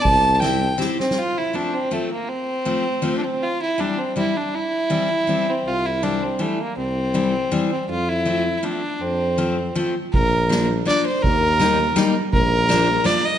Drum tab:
RD |------x-----------|------------------|------------------|------------------|
SD |------o-----o--o-o|------------------|------------------|------------------|
BD |o-----------------|------------------|------------------|------------------|

RD |------------------|------------------|------------------|------------------|
SD |------------------|------------------|------------------|------------------|
BD |------------------|------------------|------------------|------------------|

RD |------------------|x-----------x--x--|x-----x-----x-----|x-----------x--x--|
SD |------------------|------o-----o-----|------o-----o-----|------o-----o-----|
BD |------------------|o-----------------|o-----------------|o-----------------|